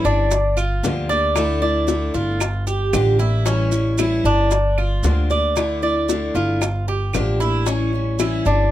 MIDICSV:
0, 0, Header, 1, 6, 480
1, 0, Start_track
1, 0, Tempo, 525855
1, 1241, Time_signature, 4, 2, 24, 8
1, 7953, End_track
2, 0, Start_track
2, 0, Title_t, "Cuban tres"
2, 0, Program_c, 0, 25
2, 45, Note_on_c, 0, 62, 85
2, 509, Note_off_c, 0, 62, 0
2, 517, Note_on_c, 0, 65, 69
2, 985, Note_off_c, 0, 65, 0
2, 998, Note_on_c, 0, 74, 83
2, 1465, Note_off_c, 0, 74, 0
2, 1476, Note_on_c, 0, 74, 72
2, 1945, Note_off_c, 0, 74, 0
2, 1957, Note_on_c, 0, 65, 76
2, 2425, Note_off_c, 0, 65, 0
2, 2437, Note_on_c, 0, 67, 72
2, 2905, Note_off_c, 0, 67, 0
2, 2914, Note_on_c, 0, 64, 75
2, 3151, Note_off_c, 0, 64, 0
2, 3157, Note_on_c, 0, 61, 81
2, 3625, Note_off_c, 0, 61, 0
2, 3641, Note_on_c, 0, 64, 70
2, 3875, Note_off_c, 0, 64, 0
2, 3883, Note_on_c, 0, 62, 90
2, 4348, Note_off_c, 0, 62, 0
2, 4363, Note_on_c, 0, 65, 69
2, 4828, Note_off_c, 0, 65, 0
2, 4843, Note_on_c, 0, 74, 75
2, 5308, Note_off_c, 0, 74, 0
2, 5319, Note_on_c, 0, 74, 71
2, 5787, Note_off_c, 0, 74, 0
2, 5798, Note_on_c, 0, 65, 72
2, 6266, Note_off_c, 0, 65, 0
2, 6280, Note_on_c, 0, 67, 69
2, 6747, Note_off_c, 0, 67, 0
2, 6757, Note_on_c, 0, 64, 78
2, 6993, Note_off_c, 0, 64, 0
2, 6994, Note_on_c, 0, 61, 80
2, 7464, Note_off_c, 0, 61, 0
2, 7479, Note_on_c, 0, 64, 66
2, 7714, Note_off_c, 0, 64, 0
2, 7725, Note_on_c, 0, 62, 81
2, 7953, Note_off_c, 0, 62, 0
2, 7953, End_track
3, 0, Start_track
3, 0, Title_t, "Steel-string acoustic guitar"
3, 0, Program_c, 1, 25
3, 47, Note_on_c, 1, 64, 44
3, 58, Note_on_c, 1, 61, 45
3, 69, Note_on_c, 1, 55, 40
3, 274, Note_off_c, 1, 64, 0
3, 280, Note_off_c, 1, 61, 0
3, 285, Note_off_c, 1, 55, 0
3, 760, Note_on_c, 1, 50, 77
3, 764, Note_on_c, 1, 53, 74
3, 771, Note_on_c, 1, 58, 76
3, 777, Note_on_c, 1, 62, 79
3, 779, Note_on_c, 1, 67, 84
3, 987, Note_off_c, 1, 67, 0
3, 991, Note_off_c, 1, 50, 0
3, 993, Note_off_c, 1, 53, 0
3, 997, Note_off_c, 1, 58, 0
3, 998, Note_on_c, 1, 67, 47
3, 999, Note_off_c, 1, 62, 0
3, 1012, Note_on_c, 1, 62, 44
3, 1019, Note_on_c, 1, 58, 46
3, 1230, Note_off_c, 1, 67, 0
3, 1237, Note_off_c, 1, 62, 0
3, 1240, Note_on_c, 1, 50, 78
3, 1241, Note_off_c, 1, 58, 0
3, 1248, Note_on_c, 1, 57, 83
3, 1255, Note_on_c, 1, 62, 83
3, 1260, Note_on_c, 1, 64, 85
3, 1467, Note_off_c, 1, 64, 0
3, 1471, Note_off_c, 1, 50, 0
3, 1475, Note_off_c, 1, 57, 0
3, 1476, Note_off_c, 1, 62, 0
3, 1478, Note_on_c, 1, 64, 54
3, 1487, Note_on_c, 1, 62, 45
3, 1499, Note_on_c, 1, 57, 45
3, 1705, Note_on_c, 1, 50, 70
3, 1707, Note_off_c, 1, 57, 0
3, 1710, Note_off_c, 1, 64, 0
3, 1712, Note_off_c, 1, 62, 0
3, 1718, Note_on_c, 1, 57, 77
3, 1723, Note_on_c, 1, 62, 76
3, 1727, Note_on_c, 1, 64, 76
3, 1940, Note_off_c, 1, 64, 0
3, 1944, Note_off_c, 1, 50, 0
3, 1948, Note_off_c, 1, 62, 0
3, 1950, Note_off_c, 1, 57, 0
3, 1951, Note_on_c, 1, 64, 50
3, 1959, Note_on_c, 1, 62, 47
3, 1970, Note_on_c, 1, 57, 45
3, 2187, Note_off_c, 1, 64, 0
3, 2191, Note_off_c, 1, 62, 0
3, 2196, Note_off_c, 1, 57, 0
3, 2678, Note_on_c, 1, 50, 74
3, 2685, Note_on_c, 1, 53, 67
3, 2689, Note_on_c, 1, 58, 77
3, 2696, Note_on_c, 1, 62, 77
3, 2700, Note_on_c, 1, 67, 88
3, 2898, Note_off_c, 1, 67, 0
3, 2909, Note_on_c, 1, 67, 48
3, 2910, Note_off_c, 1, 50, 0
3, 2914, Note_off_c, 1, 53, 0
3, 2915, Note_off_c, 1, 62, 0
3, 2916, Note_off_c, 1, 58, 0
3, 2926, Note_on_c, 1, 62, 44
3, 2933, Note_on_c, 1, 58, 41
3, 3146, Note_off_c, 1, 67, 0
3, 3152, Note_on_c, 1, 52, 75
3, 3155, Note_off_c, 1, 62, 0
3, 3156, Note_off_c, 1, 58, 0
3, 3159, Note_on_c, 1, 55, 75
3, 3169, Note_on_c, 1, 61, 81
3, 3174, Note_on_c, 1, 64, 82
3, 3378, Note_off_c, 1, 64, 0
3, 3388, Note_off_c, 1, 52, 0
3, 3389, Note_on_c, 1, 64, 56
3, 3391, Note_off_c, 1, 55, 0
3, 3392, Note_off_c, 1, 61, 0
3, 3402, Note_on_c, 1, 61, 46
3, 3413, Note_on_c, 1, 55, 43
3, 3626, Note_off_c, 1, 64, 0
3, 3627, Note_off_c, 1, 55, 0
3, 3628, Note_on_c, 1, 52, 76
3, 3633, Note_off_c, 1, 61, 0
3, 3638, Note_on_c, 1, 55, 75
3, 3644, Note_on_c, 1, 61, 82
3, 3649, Note_on_c, 1, 64, 80
3, 3865, Note_off_c, 1, 52, 0
3, 3868, Note_off_c, 1, 64, 0
3, 3871, Note_off_c, 1, 55, 0
3, 3874, Note_off_c, 1, 61, 0
3, 3878, Note_on_c, 1, 64, 45
3, 3888, Note_on_c, 1, 61, 43
3, 3901, Note_on_c, 1, 55, 40
3, 4111, Note_off_c, 1, 64, 0
3, 4115, Note_off_c, 1, 55, 0
3, 4116, Note_off_c, 1, 61, 0
3, 4597, Note_on_c, 1, 50, 77
3, 4604, Note_on_c, 1, 53, 68
3, 4609, Note_on_c, 1, 58, 72
3, 4613, Note_on_c, 1, 62, 78
3, 4616, Note_on_c, 1, 67, 75
3, 4824, Note_off_c, 1, 67, 0
3, 4830, Note_off_c, 1, 50, 0
3, 4834, Note_off_c, 1, 53, 0
3, 4834, Note_off_c, 1, 62, 0
3, 4834, Note_on_c, 1, 67, 46
3, 4836, Note_off_c, 1, 58, 0
3, 4845, Note_on_c, 1, 62, 47
3, 4853, Note_on_c, 1, 58, 43
3, 5069, Note_off_c, 1, 67, 0
3, 5071, Note_on_c, 1, 50, 74
3, 5074, Note_off_c, 1, 58, 0
3, 5074, Note_off_c, 1, 62, 0
3, 5078, Note_on_c, 1, 57, 70
3, 5085, Note_on_c, 1, 62, 77
3, 5091, Note_on_c, 1, 64, 82
3, 5303, Note_off_c, 1, 64, 0
3, 5307, Note_off_c, 1, 50, 0
3, 5310, Note_off_c, 1, 62, 0
3, 5311, Note_off_c, 1, 57, 0
3, 5314, Note_on_c, 1, 64, 53
3, 5321, Note_on_c, 1, 62, 47
3, 5333, Note_on_c, 1, 57, 40
3, 5548, Note_off_c, 1, 64, 0
3, 5550, Note_off_c, 1, 57, 0
3, 5551, Note_on_c, 1, 50, 65
3, 5552, Note_off_c, 1, 62, 0
3, 5561, Note_on_c, 1, 57, 82
3, 5568, Note_on_c, 1, 62, 79
3, 5572, Note_on_c, 1, 64, 79
3, 5784, Note_off_c, 1, 64, 0
3, 5787, Note_off_c, 1, 50, 0
3, 5792, Note_off_c, 1, 57, 0
3, 5793, Note_off_c, 1, 62, 0
3, 5795, Note_on_c, 1, 64, 50
3, 5803, Note_on_c, 1, 62, 43
3, 5813, Note_on_c, 1, 57, 39
3, 6029, Note_off_c, 1, 64, 0
3, 6030, Note_off_c, 1, 62, 0
3, 6037, Note_off_c, 1, 57, 0
3, 6509, Note_on_c, 1, 50, 65
3, 6518, Note_on_c, 1, 53, 77
3, 6519, Note_on_c, 1, 58, 80
3, 6525, Note_on_c, 1, 62, 80
3, 6531, Note_on_c, 1, 67, 83
3, 6743, Note_off_c, 1, 67, 0
3, 6746, Note_off_c, 1, 50, 0
3, 6751, Note_off_c, 1, 53, 0
3, 6751, Note_off_c, 1, 58, 0
3, 6754, Note_off_c, 1, 62, 0
3, 6754, Note_on_c, 1, 67, 44
3, 6771, Note_on_c, 1, 62, 44
3, 6779, Note_on_c, 1, 58, 40
3, 6988, Note_on_c, 1, 52, 69
3, 6989, Note_off_c, 1, 67, 0
3, 6997, Note_off_c, 1, 58, 0
3, 6997, Note_off_c, 1, 62, 0
3, 7001, Note_on_c, 1, 55, 76
3, 7007, Note_on_c, 1, 61, 80
3, 7014, Note_on_c, 1, 64, 85
3, 7224, Note_off_c, 1, 64, 0
3, 7226, Note_off_c, 1, 52, 0
3, 7232, Note_off_c, 1, 55, 0
3, 7235, Note_off_c, 1, 61, 0
3, 7235, Note_on_c, 1, 64, 47
3, 7250, Note_on_c, 1, 61, 45
3, 7259, Note_on_c, 1, 55, 43
3, 7469, Note_off_c, 1, 64, 0
3, 7471, Note_off_c, 1, 55, 0
3, 7476, Note_on_c, 1, 52, 72
3, 7477, Note_off_c, 1, 61, 0
3, 7481, Note_on_c, 1, 55, 72
3, 7489, Note_on_c, 1, 61, 83
3, 7496, Note_on_c, 1, 64, 73
3, 7703, Note_off_c, 1, 64, 0
3, 7709, Note_off_c, 1, 52, 0
3, 7712, Note_off_c, 1, 55, 0
3, 7712, Note_off_c, 1, 61, 0
3, 7714, Note_on_c, 1, 64, 46
3, 7723, Note_on_c, 1, 61, 42
3, 7735, Note_on_c, 1, 55, 41
3, 7948, Note_off_c, 1, 64, 0
3, 7953, Note_off_c, 1, 55, 0
3, 7953, Note_off_c, 1, 61, 0
3, 7953, End_track
4, 0, Start_track
4, 0, Title_t, "Upright bass"
4, 0, Program_c, 2, 32
4, 40, Note_on_c, 2, 31, 98
4, 724, Note_off_c, 2, 31, 0
4, 760, Note_on_c, 2, 38, 96
4, 1901, Note_off_c, 2, 38, 0
4, 1959, Note_on_c, 2, 31, 93
4, 2644, Note_off_c, 2, 31, 0
4, 2676, Note_on_c, 2, 33, 89
4, 3819, Note_off_c, 2, 33, 0
4, 3872, Note_on_c, 2, 31, 94
4, 4561, Note_off_c, 2, 31, 0
4, 4589, Note_on_c, 2, 38, 85
4, 5735, Note_off_c, 2, 38, 0
4, 5793, Note_on_c, 2, 31, 94
4, 6481, Note_off_c, 2, 31, 0
4, 6519, Note_on_c, 2, 33, 89
4, 7660, Note_off_c, 2, 33, 0
4, 7719, Note_on_c, 2, 31, 100
4, 7953, Note_off_c, 2, 31, 0
4, 7953, End_track
5, 0, Start_track
5, 0, Title_t, "Muted steel-string acoustic guitar strokes"
5, 282, Note_on_c, 9, 29, 64
5, 373, Note_off_c, 9, 29, 0
5, 2194, Note_on_c, 9, 29, 60
5, 2285, Note_off_c, 9, 29, 0
5, 4114, Note_on_c, 9, 29, 62
5, 4205, Note_off_c, 9, 29, 0
5, 6033, Note_on_c, 9, 29, 62
5, 6124, Note_off_c, 9, 29, 0
5, 7953, End_track
6, 0, Start_track
6, 0, Title_t, "Drums"
6, 47, Note_on_c, 9, 70, 27
6, 52, Note_on_c, 9, 60, 35
6, 139, Note_off_c, 9, 70, 0
6, 143, Note_off_c, 9, 60, 0
6, 283, Note_on_c, 9, 70, 75
6, 288, Note_on_c, 9, 60, 71
6, 374, Note_off_c, 9, 70, 0
6, 379, Note_off_c, 9, 60, 0
6, 525, Note_on_c, 9, 70, 64
6, 525, Note_on_c, 9, 75, 63
6, 526, Note_on_c, 9, 60, 36
6, 616, Note_off_c, 9, 70, 0
6, 616, Note_off_c, 9, 75, 0
6, 618, Note_off_c, 9, 60, 0
6, 768, Note_on_c, 9, 70, 68
6, 770, Note_on_c, 9, 60, 34
6, 770, Note_on_c, 9, 61, 86
6, 859, Note_off_c, 9, 70, 0
6, 861, Note_off_c, 9, 60, 0
6, 861, Note_off_c, 9, 61, 0
6, 1005, Note_on_c, 9, 60, 36
6, 1010, Note_on_c, 9, 70, 29
6, 1096, Note_off_c, 9, 60, 0
6, 1101, Note_off_c, 9, 70, 0
6, 1238, Note_on_c, 9, 60, 72
6, 1239, Note_on_c, 9, 75, 62
6, 1242, Note_on_c, 9, 70, 68
6, 1329, Note_off_c, 9, 60, 0
6, 1330, Note_off_c, 9, 75, 0
6, 1333, Note_off_c, 9, 70, 0
6, 1717, Note_on_c, 9, 60, 61
6, 1717, Note_on_c, 9, 70, 73
6, 1808, Note_off_c, 9, 60, 0
6, 1808, Note_off_c, 9, 70, 0
6, 1958, Note_on_c, 9, 70, 31
6, 1963, Note_on_c, 9, 60, 34
6, 2049, Note_off_c, 9, 70, 0
6, 2054, Note_off_c, 9, 60, 0
6, 2195, Note_on_c, 9, 75, 68
6, 2197, Note_on_c, 9, 70, 73
6, 2201, Note_on_c, 9, 60, 71
6, 2286, Note_off_c, 9, 75, 0
6, 2289, Note_off_c, 9, 70, 0
6, 2292, Note_off_c, 9, 60, 0
6, 2439, Note_on_c, 9, 70, 60
6, 2441, Note_on_c, 9, 60, 36
6, 2531, Note_off_c, 9, 70, 0
6, 2532, Note_off_c, 9, 60, 0
6, 2677, Note_on_c, 9, 75, 65
6, 2678, Note_on_c, 9, 60, 33
6, 2678, Note_on_c, 9, 61, 82
6, 2679, Note_on_c, 9, 70, 73
6, 2769, Note_off_c, 9, 60, 0
6, 2769, Note_off_c, 9, 61, 0
6, 2769, Note_off_c, 9, 75, 0
6, 2770, Note_off_c, 9, 70, 0
6, 2916, Note_on_c, 9, 60, 37
6, 2916, Note_on_c, 9, 70, 28
6, 3007, Note_off_c, 9, 60, 0
6, 3007, Note_off_c, 9, 70, 0
6, 3156, Note_on_c, 9, 60, 71
6, 3158, Note_on_c, 9, 70, 69
6, 3247, Note_off_c, 9, 60, 0
6, 3250, Note_off_c, 9, 70, 0
6, 3391, Note_on_c, 9, 70, 63
6, 3483, Note_off_c, 9, 70, 0
6, 3634, Note_on_c, 9, 70, 75
6, 3641, Note_on_c, 9, 75, 65
6, 3646, Note_on_c, 9, 60, 61
6, 3726, Note_off_c, 9, 70, 0
6, 3732, Note_off_c, 9, 75, 0
6, 3737, Note_off_c, 9, 60, 0
6, 3880, Note_on_c, 9, 70, 29
6, 3881, Note_on_c, 9, 60, 33
6, 3971, Note_off_c, 9, 70, 0
6, 3973, Note_off_c, 9, 60, 0
6, 4117, Note_on_c, 9, 70, 69
6, 4123, Note_on_c, 9, 60, 70
6, 4208, Note_off_c, 9, 70, 0
6, 4214, Note_off_c, 9, 60, 0
6, 4361, Note_on_c, 9, 75, 63
6, 4365, Note_on_c, 9, 60, 33
6, 4452, Note_off_c, 9, 75, 0
6, 4457, Note_off_c, 9, 60, 0
6, 4593, Note_on_c, 9, 70, 72
6, 4605, Note_on_c, 9, 60, 34
6, 4605, Note_on_c, 9, 61, 81
6, 4684, Note_off_c, 9, 70, 0
6, 4696, Note_off_c, 9, 60, 0
6, 4696, Note_off_c, 9, 61, 0
6, 4839, Note_on_c, 9, 70, 28
6, 4844, Note_on_c, 9, 60, 33
6, 4930, Note_off_c, 9, 70, 0
6, 4935, Note_off_c, 9, 60, 0
6, 5079, Note_on_c, 9, 70, 69
6, 5083, Note_on_c, 9, 60, 71
6, 5084, Note_on_c, 9, 75, 58
6, 5170, Note_off_c, 9, 70, 0
6, 5174, Note_off_c, 9, 60, 0
6, 5176, Note_off_c, 9, 75, 0
6, 5559, Note_on_c, 9, 70, 74
6, 5562, Note_on_c, 9, 60, 60
6, 5650, Note_off_c, 9, 70, 0
6, 5653, Note_off_c, 9, 60, 0
6, 5798, Note_on_c, 9, 70, 28
6, 5800, Note_on_c, 9, 60, 34
6, 5889, Note_off_c, 9, 70, 0
6, 5892, Note_off_c, 9, 60, 0
6, 6038, Note_on_c, 9, 75, 70
6, 6040, Note_on_c, 9, 60, 69
6, 6045, Note_on_c, 9, 70, 70
6, 6130, Note_off_c, 9, 75, 0
6, 6131, Note_off_c, 9, 60, 0
6, 6136, Note_off_c, 9, 70, 0
6, 6278, Note_on_c, 9, 60, 35
6, 6369, Note_off_c, 9, 60, 0
6, 6514, Note_on_c, 9, 75, 65
6, 6521, Note_on_c, 9, 70, 69
6, 6523, Note_on_c, 9, 60, 36
6, 6523, Note_on_c, 9, 61, 78
6, 6606, Note_off_c, 9, 75, 0
6, 6613, Note_off_c, 9, 70, 0
6, 6614, Note_off_c, 9, 60, 0
6, 6614, Note_off_c, 9, 61, 0
6, 6759, Note_on_c, 9, 60, 36
6, 6763, Note_on_c, 9, 70, 30
6, 6851, Note_off_c, 9, 60, 0
6, 6854, Note_off_c, 9, 70, 0
6, 6997, Note_on_c, 9, 60, 67
6, 6998, Note_on_c, 9, 70, 72
6, 7088, Note_off_c, 9, 60, 0
6, 7089, Note_off_c, 9, 70, 0
6, 7477, Note_on_c, 9, 70, 72
6, 7481, Note_on_c, 9, 60, 58
6, 7487, Note_on_c, 9, 75, 61
6, 7568, Note_off_c, 9, 70, 0
6, 7572, Note_off_c, 9, 60, 0
6, 7578, Note_off_c, 9, 75, 0
6, 7716, Note_on_c, 9, 70, 29
6, 7720, Note_on_c, 9, 60, 32
6, 7807, Note_off_c, 9, 70, 0
6, 7811, Note_off_c, 9, 60, 0
6, 7953, End_track
0, 0, End_of_file